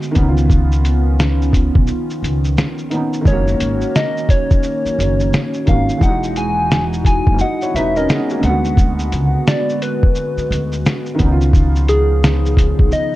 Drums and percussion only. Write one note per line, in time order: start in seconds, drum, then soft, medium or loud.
0.02 shaker soft
0.15 kick medium
0.15 closed hi-hat medium
0.15 shaker soft
0.37 shaker soft
0.50 kick loud
0.50 shaker medium
0.72 shaker medium
0.85 closed hi-hat medium
0.85 shaker medium
1.20 snare loud
1.20 shaker medium
1.42 shaker soft
1.53 kick medium
1.53 closed hi-hat medium
1.53 shaker soft
1.75 kick loud
1.87 shaker medium
2.10 shaker soft
2.24 closed hi-hat medium
2.24 shaker medium
2.44 shaker soft
2.58 snare loud
2.58 shaker medium
2.78 shaker soft
2.91 closed hi-hat medium
2.91 shaker soft
3.13 shaker soft
3.25 kick loud
3.25 shaker medium
3.48 shaker soft
3.60 closed hi-hat medium
3.60 shaker medium
3.81 shaker soft
3.95 snare medium
3.95 shaker medium
4.17 shaker soft
4.29 kick loud
4.29 closed hi-hat medium
4.29 shaker soft
4.51 kick loud
4.51 shaker soft
4.63 shaker medium
4.86 shaker medium
5.00 closed hi-hat medium
5.00 shaker medium
5.20 shaker soft
5.33 snare loud
5.33 shaker medium
5.54 shaker soft
5.67 kick medium
5.67 closed hi-hat medium
5.67 shaker soft
5.89 shaker soft
6.01 kick loud
6.01 shaker medium
6.23 shaker medium
6.36 closed hi-hat medium
6.36 shaker medium
6.71 snare loud
6.71 shaker medium
6.93 shaker soft
7.05 kick medium
7.05 closed hi-hat medium
7.05 shaker medium
7.27 kick loud
7.39 shaker medium
7.61 shaker soft
7.76 closed hi-hat medium
7.76 shaker medium
7.96 shaker soft
8.09 snare loud
8.09 shaker medium
8.30 shaker soft
8.43 closed hi-hat medium
8.43 shaker soft
8.65 shaker medium
8.77 kick loud
8.77 shaker medium
8.99 shaker medium
9.12 closed hi-hat medium
9.12 shaker medium
9.47 snare loud
9.47 shaker medium
9.69 shaker soft
9.82 closed hi-hat medium
9.82 shaker medium
10.03 kick loud
10.15 shaker medium
10.38 shaker soft
10.52 closed hi-hat medium
10.52 shaker medium
10.72 shaker soft
10.86 snare loud
10.86 shaker medium
11.06 shaker soft
11.19 kick medium
11.19 closed hi-hat medium
11.19 shaker soft
11.41 shaker medium
11.53 kick loud
11.53 shaker medium
11.76 shaker medium
11.88 closed hi-hat medium
11.88 shaker medium
12.24 snare loud
12.24 shaker medium
12.46 shaker soft
12.57 kick medium
12.57 closed hi-hat medium
12.57 shaker medium
12.79 kick loud
12.92 shaker medium